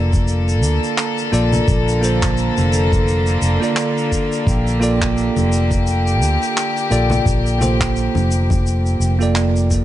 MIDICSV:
0, 0, Header, 1, 5, 480
1, 0, Start_track
1, 0, Key_signature, -2, "major"
1, 0, Tempo, 697674
1, 1157, Time_signature, 4, 2, 24, 8
1, 6773, End_track
2, 0, Start_track
2, 0, Title_t, "Tine electric piano"
2, 0, Program_c, 0, 4
2, 0, Note_on_c, 0, 58, 97
2, 0, Note_on_c, 0, 65, 84
2, 0, Note_on_c, 0, 69, 81
2, 0, Note_on_c, 0, 74, 99
2, 883, Note_off_c, 0, 58, 0
2, 887, Note_off_c, 0, 65, 0
2, 892, Note_off_c, 0, 69, 0
2, 896, Note_off_c, 0, 74, 0
2, 908, Note_on_c, 0, 58, 82
2, 912, Note_on_c, 0, 65, 82
2, 916, Note_on_c, 0, 69, 83
2, 921, Note_on_c, 0, 74, 97
2, 1368, Note_off_c, 0, 58, 0
2, 1369, Note_off_c, 0, 65, 0
2, 1371, Note_off_c, 0, 69, 0
2, 1374, Note_off_c, 0, 74, 0
2, 1382, Note_on_c, 0, 58, 77
2, 1390, Note_on_c, 0, 65, 70
2, 1397, Note_on_c, 0, 69, 73
2, 1408, Note_on_c, 0, 72, 86
2, 2453, Note_off_c, 0, 58, 0
2, 2457, Note_off_c, 0, 65, 0
2, 2460, Note_off_c, 0, 69, 0
2, 2466, Note_off_c, 0, 72, 0
2, 2477, Note_on_c, 0, 58, 72
2, 2485, Note_on_c, 0, 65, 70
2, 2492, Note_on_c, 0, 69, 70
2, 2502, Note_on_c, 0, 74, 83
2, 3284, Note_off_c, 0, 58, 0
2, 3288, Note_off_c, 0, 65, 0
2, 3291, Note_off_c, 0, 69, 0
2, 3297, Note_off_c, 0, 74, 0
2, 3299, Note_on_c, 0, 58, 94
2, 3309, Note_on_c, 0, 65, 88
2, 3317, Note_on_c, 0, 69, 91
2, 3326, Note_on_c, 0, 74, 106
2, 4723, Note_off_c, 0, 58, 0
2, 4728, Note_off_c, 0, 65, 0
2, 4732, Note_off_c, 0, 69, 0
2, 4736, Note_off_c, 0, 74, 0
2, 4751, Note_on_c, 0, 58, 93
2, 4754, Note_on_c, 0, 65, 85
2, 4757, Note_on_c, 0, 69, 86
2, 4762, Note_on_c, 0, 74, 105
2, 5209, Note_off_c, 0, 58, 0
2, 5211, Note_off_c, 0, 65, 0
2, 5212, Note_off_c, 0, 69, 0
2, 5214, Note_off_c, 0, 74, 0
2, 5219, Note_on_c, 0, 58, 78
2, 5229, Note_on_c, 0, 65, 74
2, 5237, Note_on_c, 0, 69, 70
2, 5247, Note_on_c, 0, 72, 88
2, 6291, Note_off_c, 0, 58, 0
2, 6296, Note_off_c, 0, 65, 0
2, 6300, Note_off_c, 0, 69, 0
2, 6305, Note_off_c, 0, 72, 0
2, 6322, Note_on_c, 0, 58, 82
2, 6331, Note_on_c, 0, 65, 72
2, 6337, Note_on_c, 0, 69, 70
2, 6347, Note_on_c, 0, 74, 86
2, 6773, Note_off_c, 0, 58, 0
2, 6773, Note_off_c, 0, 65, 0
2, 6773, Note_off_c, 0, 69, 0
2, 6773, Note_off_c, 0, 74, 0
2, 6773, End_track
3, 0, Start_track
3, 0, Title_t, "String section"
3, 0, Program_c, 1, 48
3, 0, Note_on_c, 1, 50, 90
3, 0, Note_on_c, 1, 58, 80
3, 0, Note_on_c, 1, 69, 91
3, 3050, Note_off_c, 1, 69, 0
3, 3078, Note_on_c, 1, 67, 97
3, 6773, Note_off_c, 1, 50, 0
3, 6773, Note_off_c, 1, 58, 0
3, 6773, Note_off_c, 1, 67, 0
3, 6773, End_track
4, 0, Start_track
4, 0, Title_t, "Fingered electric bass"
4, 0, Program_c, 2, 33
4, 0, Note_on_c, 2, 29, 86
4, 434, Note_off_c, 2, 29, 0
4, 434, Note_on_c, 2, 38, 82
4, 535, Note_off_c, 2, 38, 0
4, 913, Note_on_c, 2, 34, 78
4, 1100, Note_off_c, 2, 34, 0
4, 1154, Note_on_c, 2, 34, 100
4, 1714, Note_off_c, 2, 34, 0
4, 1772, Note_on_c, 2, 29, 94
4, 2312, Note_off_c, 2, 29, 0
4, 2351, Note_on_c, 2, 29, 89
4, 2454, Note_off_c, 2, 29, 0
4, 3074, Note_on_c, 2, 34, 94
4, 3634, Note_off_c, 2, 34, 0
4, 3689, Note_on_c, 2, 29, 91
4, 4277, Note_off_c, 2, 29, 0
4, 4277, Note_on_c, 2, 38, 87
4, 4377, Note_off_c, 2, 38, 0
4, 4755, Note_on_c, 2, 34, 81
4, 4941, Note_off_c, 2, 34, 0
4, 4994, Note_on_c, 2, 34, 97
4, 5554, Note_off_c, 2, 34, 0
4, 5609, Note_on_c, 2, 29, 92
4, 6151, Note_off_c, 2, 29, 0
4, 6191, Note_on_c, 2, 29, 97
4, 6773, Note_off_c, 2, 29, 0
4, 6773, End_track
5, 0, Start_track
5, 0, Title_t, "Drums"
5, 90, Note_on_c, 9, 36, 106
5, 90, Note_on_c, 9, 82, 51
5, 159, Note_off_c, 9, 36, 0
5, 159, Note_off_c, 9, 82, 0
5, 191, Note_on_c, 9, 82, 53
5, 259, Note_off_c, 9, 82, 0
5, 334, Note_on_c, 9, 82, 51
5, 403, Note_off_c, 9, 82, 0
5, 434, Note_on_c, 9, 82, 95
5, 502, Note_off_c, 9, 82, 0
5, 576, Note_on_c, 9, 82, 45
5, 645, Note_off_c, 9, 82, 0
5, 675, Note_on_c, 9, 39, 72
5, 678, Note_on_c, 9, 82, 61
5, 743, Note_off_c, 9, 39, 0
5, 747, Note_off_c, 9, 82, 0
5, 812, Note_on_c, 9, 82, 48
5, 880, Note_off_c, 9, 82, 0
5, 918, Note_on_c, 9, 82, 73
5, 987, Note_off_c, 9, 82, 0
5, 1050, Note_on_c, 9, 64, 78
5, 1052, Note_on_c, 9, 82, 54
5, 1119, Note_off_c, 9, 64, 0
5, 1121, Note_off_c, 9, 82, 0
5, 1154, Note_on_c, 9, 82, 52
5, 1155, Note_on_c, 9, 36, 127
5, 1223, Note_off_c, 9, 36, 0
5, 1223, Note_off_c, 9, 82, 0
5, 1296, Note_on_c, 9, 82, 57
5, 1365, Note_off_c, 9, 82, 0
5, 1399, Note_on_c, 9, 82, 79
5, 1468, Note_off_c, 9, 82, 0
5, 1529, Note_on_c, 9, 82, 49
5, 1530, Note_on_c, 9, 36, 92
5, 1533, Note_on_c, 9, 39, 66
5, 1598, Note_off_c, 9, 82, 0
5, 1599, Note_off_c, 9, 36, 0
5, 1602, Note_off_c, 9, 39, 0
5, 1633, Note_on_c, 9, 82, 46
5, 1702, Note_off_c, 9, 82, 0
5, 1770, Note_on_c, 9, 82, 51
5, 1774, Note_on_c, 9, 63, 61
5, 1839, Note_off_c, 9, 82, 0
5, 1843, Note_off_c, 9, 63, 0
5, 1877, Note_on_c, 9, 82, 81
5, 1946, Note_off_c, 9, 82, 0
5, 2011, Note_on_c, 9, 36, 104
5, 2014, Note_on_c, 9, 82, 49
5, 2079, Note_off_c, 9, 36, 0
5, 2083, Note_off_c, 9, 82, 0
5, 2118, Note_on_c, 9, 82, 58
5, 2187, Note_off_c, 9, 82, 0
5, 2247, Note_on_c, 9, 82, 49
5, 2316, Note_off_c, 9, 82, 0
5, 2354, Note_on_c, 9, 82, 90
5, 2422, Note_off_c, 9, 82, 0
5, 2496, Note_on_c, 9, 82, 45
5, 2565, Note_off_c, 9, 82, 0
5, 2591, Note_on_c, 9, 39, 77
5, 2600, Note_on_c, 9, 82, 58
5, 2660, Note_off_c, 9, 39, 0
5, 2668, Note_off_c, 9, 82, 0
5, 2736, Note_on_c, 9, 82, 43
5, 2805, Note_off_c, 9, 82, 0
5, 2834, Note_on_c, 9, 36, 60
5, 2837, Note_on_c, 9, 82, 73
5, 2903, Note_off_c, 9, 36, 0
5, 2906, Note_off_c, 9, 82, 0
5, 2973, Note_on_c, 9, 82, 44
5, 3042, Note_off_c, 9, 82, 0
5, 3074, Note_on_c, 9, 36, 122
5, 3081, Note_on_c, 9, 82, 59
5, 3143, Note_off_c, 9, 36, 0
5, 3150, Note_off_c, 9, 82, 0
5, 3215, Note_on_c, 9, 82, 43
5, 3284, Note_off_c, 9, 82, 0
5, 3319, Note_on_c, 9, 82, 74
5, 3388, Note_off_c, 9, 82, 0
5, 3449, Note_on_c, 9, 36, 95
5, 3452, Note_on_c, 9, 82, 45
5, 3455, Note_on_c, 9, 39, 74
5, 3518, Note_off_c, 9, 36, 0
5, 3521, Note_off_c, 9, 82, 0
5, 3524, Note_off_c, 9, 39, 0
5, 3560, Note_on_c, 9, 82, 46
5, 3629, Note_off_c, 9, 82, 0
5, 3691, Note_on_c, 9, 63, 71
5, 3694, Note_on_c, 9, 82, 51
5, 3760, Note_off_c, 9, 63, 0
5, 3763, Note_off_c, 9, 82, 0
5, 3800, Note_on_c, 9, 82, 78
5, 3869, Note_off_c, 9, 82, 0
5, 3929, Note_on_c, 9, 36, 99
5, 3931, Note_on_c, 9, 82, 56
5, 3997, Note_off_c, 9, 36, 0
5, 4000, Note_off_c, 9, 82, 0
5, 4037, Note_on_c, 9, 82, 53
5, 4106, Note_off_c, 9, 82, 0
5, 4178, Note_on_c, 9, 82, 50
5, 4246, Note_off_c, 9, 82, 0
5, 4282, Note_on_c, 9, 82, 86
5, 4351, Note_off_c, 9, 82, 0
5, 4420, Note_on_c, 9, 82, 47
5, 4488, Note_off_c, 9, 82, 0
5, 4522, Note_on_c, 9, 82, 54
5, 4523, Note_on_c, 9, 39, 70
5, 4591, Note_off_c, 9, 39, 0
5, 4591, Note_off_c, 9, 82, 0
5, 4659, Note_on_c, 9, 82, 45
5, 4727, Note_off_c, 9, 82, 0
5, 4758, Note_on_c, 9, 82, 81
5, 4827, Note_off_c, 9, 82, 0
5, 4884, Note_on_c, 9, 64, 85
5, 4896, Note_on_c, 9, 82, 51
5, 4953, Note_off_c, 9, 64, 0
5, 4964, Note_off_c, 9, 82, 0
5, 4994, Note_on_c, 9, 36, 117
5, 5000, Note_on_c, 9, 82, 60
5, 5063, Note_off_c, 9, 36, 0
5, 5069, Note_off_c, 9, 82, 0
5, 5136, Note_on_c, 9, 82, 48
5, 5204, Note_off_c, 9, 82, 0
5, 5237, Note_on_c, 9, 64, 83
5, 5240, Note_on_c, 9, 82, 93
5, 5306, Note_off_c, 9, 64, 0
5, 5309, Note_off_c, 9, 82, 0
5, 5371, Note_on_c, 9, 36, 93
5, 5375, Note_on_c, 9, 39, 85
5, 5379, Note_on_c, 9, 82, 48
5, 5439, Note_off_c, 9, 36, 0
5, 5444, Note_off_c, 9, 39, 0
5, 5447, Note_off_c, 9, 82, 0
5, 5479, Note_on_c, 9, 82, 52
5, 5548, Note_off_c, 9, 82, 0
5, 5607, Note_on_c, 9, 63, 72
5, 5618, Note_on_c, 9, 82, 43
5, 5676, Note_off_c, 9, 63, 0
5, 5687, Note_off_c, 9, 82, 0
5, 5719, Note_on_c, 9, 82, 86
5, 5788, Note_off_c, 9, 82, 0
5, 5848, Note_on_c, 9, 63, 58
5, 5852, Note_on_c, 9, 36, 100
5, 5857, Note_on_c, 9, 82, 49
5, 5917, Note_off_c, 9, 63, 0
5, 5921, Note_off_c, 9, 36, 0
5, 5926, Note_off_c, 9, 82, 0
5, 5962, Note_on_c, 9, 82, 59
5, 6031, Note_off_c, 9, 82, 0
5, 6097, Note_on_c, 9, 82, 50
5, 6165, Note_off_c, 9, 82, 0
5, 6201, Note_on_c, 9, 82, 98
5, 6270, Note_off_c, 9, 82, 0
5, 6338, Note_on_c, 9, 82, 47
5, 6407, Note_off_c, 9, 82, 0
5, 6436, Note_on_c, 9, 39, 72
5, 6441, Note_on_c, 9, 82, 54
5, 6505, Note_off_c, 9, 39, 0
5, 6510, Note_off_c, 9, 82, 0
5, 6579, Note_on_c, 9, 82, 47
5, 6648, Note_off_c, 9, 82, 0
5, 6679, Note_on_c, 9, 36, 58
5, 6679, Note_on_c, 9, 82, 72
5, 6748, Note_off_c, 9, 36, 0
5, 6748, Note_off_c, 9, 82, 0
5, 6773, End_track
0, 0, End_of_file